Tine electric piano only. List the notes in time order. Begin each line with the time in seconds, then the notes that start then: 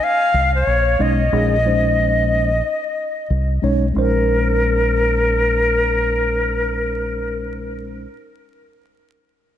0.99 G#3 C#4 D#4 D#5
1.32 G#3 C#4 D#4 G#4
1.66 G#3 C#4 D#4 C5
3.62 G#3 C#4 D#4 C#5
3.93 G#3 C#4 D#4
3.98 C5